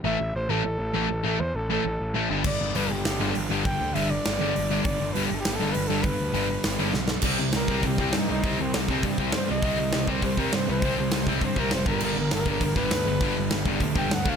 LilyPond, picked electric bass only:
\new Staff \with { instrumentName = "Picked electric bass" } { \clef bass \time 4/4 \key g \mixolydian \tempo 4 = 201 a,,8 a,,8 a,,8 a,,8 a,,8 a,,8 a,,8 a,,8 | a,,8 e,8 a,,4 a,,8 a,,8 a,,8 g,,8 | g,,8 g,,8 g,,8 g,,8 g,,8 g,,8 g,,8 g,,8 | g,,8 d,8 g,,4 g,,8 g,,8 g,,4 |
g,,8 g,,8 g,,8 g,,8 g,,8 g,,8 g,,8 g,,8 | g,,8 d,8 g,,4 g,,8 g,,8 b,,4 | c,8 c,8 c,8 c,8 c,8 c,8 g,8 c,8 | c,8 c,8 c,8 c,8 g,8 c,8 g,8 c,8 |
c,8 c,8 c,8 c,8 c,8 c,8 g,8 c,8 | c,8 c,8 c,8 c,8 g,8 c,8 f,,8 g,,8 | g,,8 g,,8 g,,8 g,,8 g,,8 g,,8 d,8 g,,8 | g,,8 g,,8 g,,8 g,,8 d,8 g,,8 d,8 d,8 | }